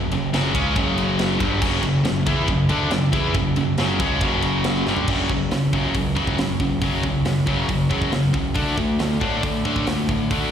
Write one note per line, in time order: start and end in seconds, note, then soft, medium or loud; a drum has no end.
0.00 0.10 F#1 medium
0.12 0.32 F#1 medium
0.12 0.29 F#2 medium
0.12 0.30 C#3 medium
0.12 ride medium
0.32 0.53 F#1 loud
0.32 0.54 F#2 medium
0.32 0.53 C#3 loud
0.32 0.54 F#3 loud
0.32 snare loud
0.32 ride loud
0.54 0.75 C#2 medium
0.54 0.74 C#3 loud
0.54 0.76 G#3 medium
0.54 0.76 C#4 loud
0.54 kick loud
0.54 ride medium
0.75 1.37 F#1 loud
0.75 1.39 F#2 loud
0.75 1.39 C#3 loud
0.75 1.40 F#3 loud
0.75 kick loud
0.75 ride loud
0.98 ride medium
1.19 snare loud
1.19 ride loud
1.40 1.61 G1 loud
1.40 1.61 G2 loud
1.40 1.61 D3 loud
1.40 1.62 G3 loud
1.40 kick loud
1.40 ride medium
1.61 1.82 F#1 medium
1.61 1.81 F#2 loud
1.61 1.82 C#3 loud
1.61 1.83 F#3 loud
1.61 kick loud
1.61 crash loud
1.83 2.04 F#1 medium
1.83 2.01 F#2 medium
1.83 2.01 C#3 medium
1.83 ride medium
2.05 2.26 F#1 medium
2.05 2.22 F#2 medium
2.05 2.23 C#3 medium
2.05 snare loud
2.05 ride medium
2.26 2.47 E2 medium
2.26 2.48 E3 medium
2.26 2.48 B3 loud
2.26 2.48 E4 loud
2.26 kick loud
2.26 ride medium
2.48 2.69 F#1 medium
2.48 2.66 F#2 medium
2.48 2.66 C#3 medium
2.48 kick medium
2.48 ride medium
2.69 2.90 D2 medium
2.69 2.90 D3 medium
2.69 2.91 A3 loud
2.69 2.91 D4 loud
2.69 ride medium
2.90 3.12 F#1 medium
2.90 3.08 F#2 medium
2.90 3.09 C#3 medium
2.90 snare loud
2.90 ride loud
3.12 3.33 E2 medium
3.12 3.34 E3 loud
3.12 3.34 B3 loud
3.12 3.35 E4 loud
3.12 kick loud
3.12 ride medium
3.34 3.55 F#1 medium
3.34 3.52 F#2 medium
3.34 3.52 C#3 medium
3.34 kick medium
3.34 ride loud
3.56 3.77 F#1 medium
3.56 3.74 F#2 medium
3.56 3.74 C#3 medium
3.56 ride medium
3.78 3.98 F#1 medium
3.78 4.00 F#2 medium
3.78 3.99 C#3 medium
3.78 4.00 F#3 medium
3.78 snare loud
3.78 ride medium
4.00 4.20 C#2 medium
4.00 4.21 C#3 medium
4.00 4.21 G#3 medium
4.00 4.22 C#4 loud
4.00 kick loud
4.00 ride medium
4.21 4.83 F#1 loud
4.21 4.87 F#2 medium
4.21 4.87 C#3 loud
4.21 4.87 F#3 loud
4.21 kick loud
4.21 ride loud
4.42 ride medium
4.64 snare loud
4.64 ride loud
4.87 5.07 G1 medium
4.87 5.08 G2 loud
4.87 5.08 D3 loud
4.87 5.09 G3 loud
4.87 snare medium
4.97 floor tom medium
5.07 5.29 F#1 medium
5.07 5.29 F#2 medium
5.07 5.29 C#3 medium
5.07 5.30 F#3 loud
5.07 kick loud
5.07 crash loud
5.29 5.50 F#1 medium
5.29 5.50 F#2 medium
5.29 5.50 C#3 medium
5.29 kick medium
5.51 5.72 F#1 medium
5.51 5.71 F#2 medium
5.51 5.71 C#3 medium
5.51 snare loud
5.51 open hi-hat soft
5.73 5.94 C#2 medium
5.73 5.93 F#2 medium
5.73 5.94 C#3 medium
5.73 5.94 F#3 medium
5.73 kick medium
5.95 6.16 C#2 loud
5.95 6.14 F#2 medium
5.95 6.15 C#3 medium
5.95 kick medium
5.95 open hi-hat soft
6.15 6.38 C#2 medium
6.15 6.36 F#2 medium
6.15 6.37 C#3 medium
6.15 6.37 F#3 loud
6.15 kick medium
6.27 kick medium
6.38 6.59 F#1 medium
6.38 6.58 F#2 medium
6.38 6.58 C#3 medium
6.38 snare loud
6.38 open hi-hat medium
6.60 6.81 C#2 medium
6.60 6.80 F#2 medium
6.60 6.80 C#3 medium
6.60 kick medium
6.81 7.03 F#1 medium
6.81 7.02 F#2 medium
6.81 7.03 C#3 loud
6.81 7.03 F#3 loud
6.81 kick loud
6.81 open hi-hat medium
7.03 7.24 C#2 medium
7.03 7.23 F#2 medium
7.03 7.24 C#3 medium
7.03 kick medium
7.25 7.47 F#1 medium
7.25 7.45 F#2 medium
7.25 7.46 C#3 medium
7.25 snare loud
7.25 open hi-hat medium
7.46 7.67 F#2 medium
7.46 7.68 F#2 medium
7.46 7.68 C#3 medium
7.46 7.68 F#3 medium
7.46 kick medium
7.69 7.90 F#1 medium
7.69 7.88 F#2 medium
7.69 7.89 C#3 medium
7.69 kick medium
7.69 open hi-hat medium
7.90 8.12 E2 medium
7.90 8.11 F#2 loud
7.90 8.11 C#3 loud
7.90 8.11 F#3 loud
7.90 kick medium
8.02 kick medium
8.12 8.33 F#1 medium
8.12 8.32 F#2 medium
8.12 8.32 C#3 medium
8.12 snare loud
8.12 open hi-hat medium
8.33 8.55 C#2 medium
8.33 8.53 F#2 medium
8.33 8.54 C#3 medium
8.33 kick medium
8.54 8.77 D2 medium
8.54 8.75 D3 loud
8.54 8.76 A3 medium
8.54 8.76 D4 loud
8.54 kick loud
8.54 open hi-hat medium
8.76 8.99 D2 medium
8.76 8.97 D3 medium
8.76 8.97 A3 medium
8.76 kick medium
8.99 9.21 D2 medium
8.99 9.19 D3 medium
8.99 9.19 A3 medium
8.99 snare loud
8.99 open hi-hat medium
9.20 9.42 A2 medium
9.20 9.42 D3 medium
9.20 9.42 A3 medium
9.20 9.42 D4 loud
9.20 kick medium
9.43 9.64 A2 medium
9.43 9.63 D3 medium
9.43 9.63 A3 medium
9.43 kick loud
9.43 open hi-hat soft
9.65 9.86 A1 medium
9.65 9.86 D3 medium
9.65 9.86 A3 loud
9.65 9.86 D4 loud
9.65 kick medium
9.76 kick medium
9.87 10.08 D2 medium
9.87 10.07 D3 medium
9.87 10.07 A3 medium
9.87 snare loud
9.87 open hi-hat medium
10.09 10.30 A2 medium
10.09 10.29 D3 medium
10.09 10.29 A3 medium
10.09 kick medium
10.30 10.51 D2 medium
10.30 10.51 D3 loud
10.30 10.51 A3 medium
10.30 10.51 D4 medium
10.30 kick loud
10.30 open hi-hat medium